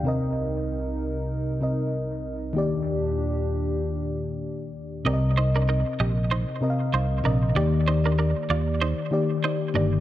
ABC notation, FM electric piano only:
X:1
M:4/4
L:1/8
Q:"Swing 16ths" 1/4=96
K:Cm
V:1 name="FM electric piano"
[C,CBe]4- [C,CBe] [C,CBe]3 | [E,B,Gd]8 | [C,CBde]3 z2 [C,CBef]2 [C,CBe] | [E,B,Gd]3 z2 [E,B,Gd]2 [E,B,Gd] |]